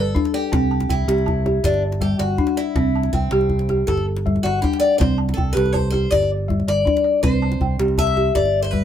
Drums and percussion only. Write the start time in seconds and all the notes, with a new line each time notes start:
0.16 djembe tone, djembe bass
0.25 djembe slap
0.34 djembe slap
0.53 djembe slap, djembe tone, djembe bass
0.72 djembe slap
0.80 djembe slap, djembe tone
0.89 djembe bass
1.09 djembe slap
1.18 djembe tone
1.28 djembe bass
1.46 djembe slap, djembe tone
1.64 djembe slap, djembe bass
1.74 djembe slap, djembe tone
1.92 djembe slap
2.01 djembe slap, djembe bass
2.20 djembe slap
2.38 djembe tone, djembe bass
2.47 djembe slap
2.57 djembe slap
2.76 djembe slap, djembe tone, djembe bass
2.95 djembe slap
3.03 djembe slap, djembe tone
3.13 djembe bass
3.31 djembe slap
3.41 djembe tone
3.49 djembe bass
3.59 djembe slap
3.69 djembe slap, djembe tone
3.88 djembe slap, djembe bass
3.97 djembe slap, djembe tone
4.17 djembe slap
4.27 djembe slap, djembe bass
4.36 djembe tone
4.46 djembe slap
4.64 djembe tone, djembe bass
4.73 djembe slap
4.83 djembe slap
5.01 djembe slap, djembe tone, djembe bass
5.29 djembe slap, djembe tone
5.38 djembe bass
5.57 djembe slap
5.66 djembe slap, djembe tone
5.75 djembe bass
5.94 djembe slap, djembe tone
6.03 djembe slap
6.12 djembe slap, djembe bass
6.23 djembe tone
6.50 djembe bass
6.60 djembe slap, djembe tone
6.68 djembe slap
6.78 djembe slap
6.87 djembe slap, djembe tone, djembe bass
6.97 djembe slap
7.24 djembe slap, djembe tone, djembe bass
7.42 djembe slap
7.52 djembe slap, djembe tone
7.61 djembe bass
7.79 djembe slap
7.88 djembe tone
7.98 djembe bass
8.07 djembe slap
8.17 djembe slap, djembe tone
8.35 djembe slap, djembe bass
8.45 djembe slap, djembe tone
8.64 djembe slap
8.74 djembe slap, djembe bass